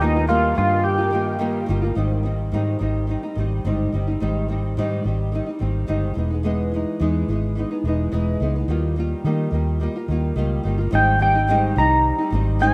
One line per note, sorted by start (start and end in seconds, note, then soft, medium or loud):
0.00 0.53 D#2 loud
0.00 0.16 D#3 medium
0.00 0.17 G3 medium
0.00 0.17 A#3 medium
0.00 0.28 D#4 medium
0.00 1.95 A#4 medium
0.00 1.95 F5 medium
0.00 1.95 G5 medium
0.00 1.92 D#6 medium
0.04 0.15 F4 medium
0.16 0.28 A#3 medium
0.16 0.29 F4 medium
0.21 0.28 G3 soft
0.27 0.54 D#3 medium
0.27 0.55 G3 medium
0.27 0.56 A#3 medium
0.27 0.57 F4 medium
0.55 1.65 G2 medium
0.55 0.99 D#3 medium
0.55 1.00 G3 medium
0.55 0.99 A#3 medium
0.55 0.83 F4 medium
0.55 0.96 F4 medium
0.84 1.64 G4 medium
0.97 1.12 A#3 soft
0.97 1.11 F4 medium
1.02 1.11 G3 soft
1.10 1.37 D#3 medium
1.10 1.38 G3 medium
1.10 1.39 A#3 medium
1.10 1.40 F4 medium
1.39 1.65 D#3 medium
1.39 1.67 G3 medium
1.39 1.68 A#3 medium
1.39 1.69 F4 medium
1.66 1.91 G1 medium
1.66 1.83 D#3 medium
1.66 1.84 G3 medium
1.66 1.83 A#3 medium
1.70 1.81 F4 medium
1.82 1.96 G3 soft
1.82 1.96 A#3 medium
1.82 1.95 F4 medium
1.95 2.54 G#1 medium
1.95 2.24 G#2 medium
1.95 2.22 D#3 medium
1.95 2.24 G3 medium
1.95 2.25 C4 medium
1.95 2.25 D#4 medium
2.23 2.52 D#3 medium
2.23 2.53 G3 medium
2.23 2.53 C4 medium
2.27 2.53 D#4 medium
2.52 2.80 G#2 medium
2.52 2.75 G#2 medium
2.52 2.78 D#3 medium
2.52 2.79 G3 medium
2.52 2.80 C4 medium
2.52 2.81 D#4 medium
2.79 3.15 G#1 medium
2.79 3.06 D#3 medium
2.79 3.08 G3 medium
2.79 3.09 C4 medium
2.79 3.09 D#4 medium
3.07 3.23 D#3 medium
3.07 3.24 G3 medium
3.07 3.24 C4 medium
3.07 3.22 D#4 medium
3.23 3.37 G3 soft
3.23 3.37 C4 soft
3.23 3.36 D#4 medium
3.35 3.59 G#1 medium
3.35 3.64 D#3 medium
3.35 3.65 G3 medium
3.35 3.65 C4 medium
3.40 3.66 D#4 medium
3.65 3.87 G1 medium
3.65 3.92 G#2 medium
3.65 3.91 D#3 medium
3.65 3.92 G3 medium
3.65 3.93 C4 medium
3.65 3.94 D#4 medium
3.92 4.15 G1 medium
3.92 4.08 D#3 medium
3.92 4.08 G3 medium
3.92 4.08 C4 medium
3.92 4.06 D#4 medium
4.07 4.21 G3 soft
4.07 4.21 C4 soft
4.07 4.20 D#4 soft
4.20 4.79 G#1 medium
4.20 4.48 G#2 medium
4.20 4.47 D#3 medium
4.20 4.48 G3 medium
4.20 4.49 C4 medium
4.20 4.49 D#4 medium
4.48 4.76 D#3 medium
4.48 4.77 G3 medium
4.48 4.78 C4 medium
4.48 4.78 D#4 medium
4.77 5.05 G#2 medium
4.77 4.99 G#2 medium
4.77 5.03 D#3 medium
4.77 5.04 G3 medium
4.77 5.06 C4 medium
4.77 5.06 D#4 medium
5.04 5.40 G#1 medium
5.04 5.31 D#3 medium
5.04 5.32 G3 medium
5.04 5.33 C4 medium
5.08 5.34 D#4 medium
5.32 5.47 D#3 medium
5.32 5.48 G3 medium
5.32 5.47 C4 medium
5.32 5.45 D#4 medium
5.46 5.59 G3 soft
5.46 5.60 C4 soft
5.46 5.60 D#4 medium
5.59 5.83 G#1 medium
5.59 5.86 D#3 medium
5.59 5.87 G3 medium
5.59 5.87 C4 medium
5.59 5.88 D#4 medium
5.87 6.11 G1 medium
5.87 6.16 G#2 medium
5.87 6.13 D#3 medium
5.87 6.15 G3 medium
5.87 6.16 C4 medium
5.87 6.17 D#4 medium
6.14 6.84 E1 medium
6.14 6.30 E3 medium
6.14 6.31 G#3 medium
6.14 6.31 B3 medium
6.18 6.29 D#4 medium
6.30 6.43 G#3 soft
6.30 6.44 B3 soft
6.30 6.44 D#4 medium
6.43 6.70 E3 medium
6.43 6.72 G#3 medium
6.43 6.73 B3 medium
6.43 6.73 D#4 medium
6.72 6.98 E3 medium
6.72 7.00 G#3 medium
6.72 7.00 B3 medium
6.76 7.01 D#4 medium
7.00 7.23 E2 medium
7.00 7.27 E3 medium
7.00 7.29 G#3 medium
7.00 7.29 B3 medium
7.00 7.29 D#4 medium
7.28 7.63 G#1 medium
7.28 7.54 E3 medium
7.28 7.56 G#3 medium
7.28 7.57 B3 medium
7.32 7.58 D#4 medium
7.55 7.71 E3 medium
7.55 7.72 G#3 medium
7.55 7.71 B3 medium
7.55 7.70 D#4 medium
7.71 7.84 G#3 soft
7.71 7.85 B3 soft
7.71 7.84 D#4 medium
7.84 8.06 E1 medium
7.84 8.10 E3 medium
7.84 8.11 G#3 medium
7.84 8.12 B3 medium
7.88 8.13 D#4 medium
8.12 8.35 E1 medium
8.12 8.39 E3 medium
8.12 8.40 G#3 medium
8.12 8.41 B3 medium
8.12 8.41 D#4 medium
8.40 8.63 C#2 medium
8.40 8.56 E3 medium
8.40 8.57 G#3 medium
8.40 8.57 B3 medium
8.40 8.55 D#4 medium
8.56 8.70 B3 soft
8.56 8.69 D#4 medium
8.60 8.69 G#3 soft
8.68 9.13 D#2 medium
8.68 8.95 D#3 medium
8.68 8.96 G3 medium
8.68 8.97 A#3 medium
8.68 8.98 F4 medium
8.96 9.24 D#3 medium
8.96 9.24 G3 medium
8.96 9.25 A#3 medium
8.96 9.26 F4 medium
9.24 9.47 D#3 medium
9.24 9.49 D#3 medium
9.24 9.51 G3 medium
9.24 9.52 A#3 medium
9.24 9.53 F4 medium
9.51 9.87 D#2 medium
9.51 9.78 D#3 medium
9.51 9.79 G3 medium
9.51 9.81 A#3 medium
9.51 9.82 F4 medium
9.80 9.95 D#3 medium
9.80 9.96 G3 medium
9.80 9.96 A#3 medium
9.80 9.95 F4 medium
9.96 10.09 G3 soft
9.96 10.09 A#3 soft
9.96 10.08 F4 medium
10.08 10.31 D#2 medium
10.08 10.34 D#3 medium
10.08 10.36 G3 medium
10.08 10.37 A#3 medium
10.12 10.37 F4 medium
10.36 10.58 C#2 medium
10.36 10.62 D#3 medium
10.36 10.64 G3 medium
10.36 10.65 A#3 medium
10.36 10.65 F4 medium
10.63 10.87 G1 medium
10.63 10.79 D#3 medium
10.63 10.80 G3 medium
10.63 10.79 A#3 medium
10.68 10.76 F4 medium
10.78 10.92 A#3 soft
10.78 10.91 F4 medium
10.82 10.91 G3 soft
10.91 11.72 G#1 loud
10.91 11.19 G#2 medium
10.91 11.18 D#3 medium
10.91 11.20 G3 medium
10.91 11.20 C4 medium
10.91 11.21 D#4 medium
10.95 11.21 G5 medium
11.19 11.35 D#3 medium
11.19 11.36 G3 medium
11.19 11.36 C4 medium
11.19 11.34 D#4 medium
11.19 11.73 G5 medium
11.35 11.49 C4 medium
11.35 11.48 D#4 medium
11.39 11.48 G3 soft
11.47 11.76 G#2 medium
11.47 11.75 D#3 medium
11.47 11.76 G3 medium
11.47 11.77 C4 medium
11.47 11.77 D#4 medium
11.76 12.11 C2 medium
11.76 12.19 D#3 medium
11.76 12.20 G3 medium
11.76 12.20 C4 medium
11.76 12.17 D#4 medium
11.76 12.29 A#5 loud
12.18 12.33 C4 soft
12.18 12.31 D#4 medium
12.22 12.31 G3 soft
12.30 12.74 G#1 loud
12.30 12.59 D#3 medium
12.30 12.60 G3 medium
12.30 12.60 C4 medium
12.35 12.61 D#4 medium
12.59 12.74 G#2 medium
12.59 12.74 D#3 medium
12.59 12.74 G3 medium
12.59 12.74 C4 medium
12.59 12.74 D#4 medium
12.59 12.74 G#5 loud